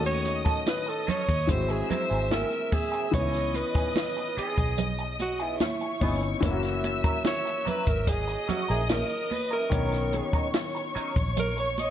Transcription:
Already playing: fingered electric bass D#2, grand piano D#3 A3 C#4 F#4, string section D#5 D#6
0.05 alto saxophone C#5, snare, closed hi-hat
0.25 muted clean electric guitar stroke, closed hi-hat, muted conga
0.45 clean electric guitar F#3 C#4 D#4 A4, kick, closed hi-hat
0.66 alto saxophone B4, muted clean electric guitar stroke, snare, closed hi-hat, high conga
0.86 alto saxophone A4, muted clean electric guitar stroke, closed hi-hat
1.07 clean electric guitar F#3 C#4 D#4 A4, alto saxophone C#5, muted fingered electric bass stroke, closed hi-hat, muted conga, low conga
1.27 fingered electric bass D#2, muted clean electric guitar stroke, kick, closed hi-hat
1.47 fingered electric bass G#1, grand piano E3 G#3 C4, alto saxophone C5, string section E5 E6, muted clean electric guitar stroke, kick, closed hi-hat
1.52 grand piano F#4
1.69 alto saxophone G#4, muted clean electric guitar stroke, closed hi-hat
1.89 clean electric guitar F#3 C4 E4 A#4, alto saxophone C5, muted fingered electric bass stroke, closed hi-hat, muted conga, low conga
2.10 fingered electric bass G#1, clean electric guitar F#3 C4 E4 G#4, closed hi-hat
2.31 clean electric guitar F#3 C4 E4 G#4, alto saxophone A#4, snare, closed hi-hat, high conga
2.51 closed hi-hat
2.71 alto saxophone G#4, muted clean electric guitar stroke, kick, open hi-hat, high conga
2.92 clean electric guitar F#3 C4 E4 G#4, closed hi-hat
3.11 fingered electric bass C#2, grand piano E3 B3 C#4, clean electric guitar E3 B3 D#4 G#4, alto saxophone C#5, string section D#5 D#6, kick, closed hi-hat, muted conga
3.16 grand piano D#4
3.22 grand piano E4
3.34 snare, closed hi-hat
3.54 alto saxophone B4, muted clean electric guitar stroke, closed hi-hat, muted conga
3.75 clean electric guitar E3 B3 D#4 G#4, muted fingered electric bass stroke, kick, closed hi-hat
3.96 muted clean electric guitar stroke, snare, closed hi-hat, high conga
4.17 muted clean electric guitar stroke, closed hi-hat
4.37 clean electric guitar E3 B3 D#4 G#4, alto saxophone G#4, muted fingered electric bass stroke, closed hi-hat
4.58 fingered electric bass B1, muted clean electric guitar stroke, kick, closed hi-hat
4.78 muted clean electric guitar stroke, closed hi-hat, low conga
4.98 muted clean electric guitar stroke, closed hi-hat
5.20 alto saxophone F#4, closed hi-hat, muted conga
5.39 clean electric guitar E3 B3 D#4 G#4, alto saxophone E4, closed hi-hat
5.60 string section C#5 C#6, muted clean electric guitar stroke, snare, closed hi-hat, high conga
5.80 muted clean electric guitar stroke, closed hi-hat
6.00 fingered electric bass G1, clean electric guitar E3 B3 D#4 G#4, grand piano B3 C#4 D#4 E4, kick, open hi-hat, high conga
6.22 muted clean electric guitar stroke, closed hi-hat
6.41 fingered electric bass F#1, grand piano E3 A#3 C#4, clean electric guitar F#3 C#4 E4, string section E5 E6, kick, closed hi-hat, muted conga
6.45 grand piano E4, clean electric guitar A#4
6.51 grand piano F#4
6.63 snare, closed hi-hat
6.84 muted clean electric guitar stroke, closed hi-hat, muted conga
7.04 clean electric guitar F#3 C#4 E4 A#4, kick, closed hi-hat
7.25 alto saxophone C#5, muted clean electric guitar stroke, snare, closed hi-hat, high conga
7.45 muted clean electric guitar stroke, closed hi-hat
7.65 clean electric guitar F#3 C#4 E4 A#4, alto saxophone B4, muted fingered electric bass stroke, closed hi-hat, muted conga, low conga
7.86 fingered electric bass G#1, alto saxophone A#4, muted clean electric guitar stroke, kick, closed hi-hat
8.07 alto saxophone G#4, string section D#5 D#6, muted clean electric guitar stroke, kick, closed hi-hat
8.28 muted clean electric guitar stroke, closed hi-hat
8.48 clean electric guitar F#3 C#4 E4 C#5, alto saxophone F#4, muted fingered electric bass stroke, closed hi-hat, muted conga, low conga
8.68 fingered electric bass A#1, clean electric guitar F#3 C#4 E4 A#4, alto saxophone G#4, closed hi-hat
8.89 clean electric guitar F#3 C#4 E4 A#4, alto saxophone A#4, snare, closed hi-hat, high conga
9.09 closed hi-hat
9.30 alto saxophone B4, muted clean electric guitar stroke, open hi-hat, high conga
9.51 clean electric guitar F#3 C#4 E4 A#4, alto saxophone A#4, closed hi-hat
9.70 fingered electric bass B1, grand piano D#3 B3 C#4, clean electric guitar F#3 C#4 D#4 A#4, string section C#5 C#6, kick, closed hi-hat, muted conga
9.74 grand piano C#5
9.92 snare, closed hi-hat
10.13 muted clean electric guitar stroke, closed hi-hat, muted conga
10.33 clean electric guitar F#3 C#4 D#4 A#4, muted fingered electric bass stroke, kick, closed hi-hat
10.54 muted clean electric guitar stroke, snare, closed hi-hat, high conga
10.75 muted clean electric guitar stroke, closed hi-hat
10.95 clean electric guitar F#3 C#4 D#4 A#4, muted fingered electric bass stroke, closed hi-hat
11.16 fingered electric bass A#1, muted clean electric guitar stroke, kick, closed hi-hat
11.36 alto saxophone A#4, muted clean electric guitar stroke, closed hi-hat, low conga
11.57 alto saxophone C#5, muted clean electric guitar stroke, closed hi-hat
11.78 alto saxophone D#5, closed hi-hat, muted conga

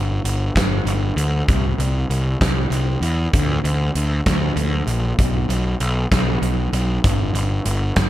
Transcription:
Already playing: picked electric bass G1
0.24 picked electric bass G1, closed hi-hat
0.55 picked electric bass G1, kick, snare, closed hi-hat
0.85 picked electric bass G1, closed hi-hat
1.16 picked electric bass D2, closed hi-hat
1.48 picked electric bass C2, kick, closed hi-hat
1.78 picked electric bass C2, closed hi-hat
2.10 picked electric bass C2, closed hi-hat
2.41 picked electric bass C2, kick, snare, closed hi-hat
2.70 picked electric bass C2, closed hi-hat
3.01 picked electric bass E2, closed hi-hat
3.33 picked electric bass D2, kick, closed hi-hat
3.64 picked electric bass D2, closed hi-hat
3.95 picked electric bass D2, closed hi-hat
4.26 picked electric bass D2, kick, snare, closed hi-hat
4.56 picked electric bass D2, closed hi-hat
4.87 picked electric bass A#1, closed hi-hat
5.19 picked electric bass B1, kick, closed hi-hat
5.49 picked electric bass B1, closed hi-hat
5.80 picked electric bass B1, closed hi-hat
6.11 picked electric bass B1, kick, snare, closed hi-hat
6.42 picked electric bass B1, closed hi-hat
6.73 picked electric bass B1, closed hi-hat
7.04 picked electric bass G1, kick, closed hi-hat
7.34 picked electric bass G1, closed hi-hat
7.66 picked electric bass G1, closed hi-hat
7.96 picked electric bass G1, kick, snare, closed hi-hat

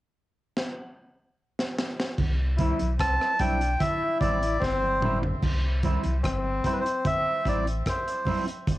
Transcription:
0.57 snare
1.59 snare
1.78 snare
2.00 snare
2.18 sub bass C2, kick, crash, low conga
2.58 clean electric guitar G3 C4 E4, trombone E4, kick, closed hi-hat, low conga
2.79 sub bass B1, closed hi-hat, high conga
2.99 sub bass C2, trombone C4, melodica A5, kick, cross-stick, closed hi-hat, high conga
3.21 cross-stick
3.39 sub bass B1, clean electric guitar G3 C4 E4, trombone D4, melodica G5, kick, closed hi-hat, high conga
3.61 closed hi-hat
3.79 trombone E4, melodica E5, kick, closed hi-hat, low conga
4.03 muted clean electric guitar stroke
4.20 sub bass A1, clean electric guitar G3 C4 E4, melodica D5, kick, closed hi-hat, low conga
4.43 closed hi-hat
4.60 sub bass G1, trombone C4, melodica C5, kick, snare
4.82 high conga
5.00 clean electric guitar G3 C4 E4, mid tom, high conga
5.23 muted clean electric guitar stroke, floor tom
5.42 sub bass C2, kick, crash, low conga
5.83 clean electric guitar G3 C4 E4, trombone E4, kick, closed hi-hat, low conga
6.03 sub bass C2, closed hi-hat, high conga
6.23 sub bass G1, trombone C4, kick, cross-stick, closed hi-hat, high conga
6.64 clean electric guitar G3 C4 E4, melodica C5, kick, closed hi-hat, high conga
6.73 melodica B4
6.81 melodica C5
6.86 closed hi-hat
7.05 melodica E5, kick, closed hi-hat, low conga
7.45 sub bass A1, clean electric guitar G3 C4 E4, melodica D5, kick, closed hi-hat
7.67 closed hi-hat
7.86 melodica C5, kick, cross-stick, closed hi-hat
8.08 closed hi-hat
8.25 clean electric guitar G3 C4 E4, kick, open hi-hat, high conga
8.47 muted clean electric guitar stroke, closed hi-hat
8.67 sub bass G1, kick, closed hi-hat, low conga

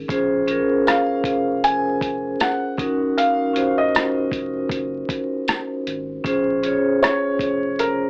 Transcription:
0.08 sub bass A#1, vibraphone C#4 F4 G#4 C5, kick, closed hi-hat
0.47 vibraphone C#4 F4 G#4 A#4, closed hi-hat
0.87 felt piano F5, cross-stick, closed hi-hat, tambourine
1.24 sub bass F1, kick, closed hi-hat
1.64 felt piano G#5, closed hi-hat
2.01 kick, closed hi-hat
2.40 felt piano F#5, cross-stick, closed hi-hat, tambourine
2.78 sub bass D#1, vibraphone C#4 D#4 F#4 A#4, kick, closed hi-hat
3.18 felt piano F5, closed hi-hat
3.53 sub bass D#1, vibraphone C#4 F4 F#4 C5, closed hi-hat
3.78 felt piano D#5
3.95 cross-stick, closed hi-hat, tambourine
4.32 sub bass F1, kick, closed hi-hat
4.69 sub bass F#1, kick, closed hi-hat
5.09 kick, closed hi-hat
5.48 cross-stick, closed hi-hat, tambourine
5.86 sub bass G#1, closed hi-hat
6.24 sub bass A#1, vibraphone C#4 F4 G#4 C5, kick, closed hi-hat
6.63 vibraphone C#4 F4 G#4 C#5, closed hi-hat
7.03 felt piano C#5, cross-stick, closed hi-hat, tambourine
7.39 sub bass F1, kick, closed hi-hat
7.79 felt piano A#4, closed hi-hat

